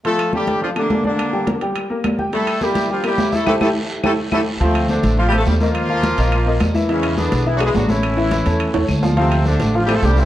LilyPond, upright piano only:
\new Staff \with { instrumentName = "Upright piano" } { \time 4/4 \key d \minor \tempo 4 = 210 <f f'>4 <a a'>4 <f f'>8 <a a'>4 <d' d''>8~ | <d' d''>8 <g g'>8 <bes bes'>8 <g g'>4 <bes bes'>4 <g' g''>8 | <g g'>4 <bes bes'>4 <g g'>8 <bes bes'>4 <e' e''>8 | <e' g' a'>8 <e' g' a'>8 r4 <e' g' a'>8 r8 <e' g' a'>8 r8 |
<f f' f''>4 <a a' c''>4 <f f' f''>8 <a a' c''>4 <bes bes' ees''>8~ | <bes bes' ees''>8 <f f' f''>4 <bes bes' ees''>4 <bes bes' ees''>4 <e e' e''>8 | <e e' e''>4 <gis gis' b'>4 <e e' e''>8 <gis gis' b'>4 <a a' cis''>8~ | <a a' cis''>8 <e e' e''>4 <a a' cis''>4 <a a' cis''>4 <f f' f''>8 |
<f f' f''>4 <a a' c''>4 <f f' f''>8 <a a' c''>4 <g g' c''>8 | }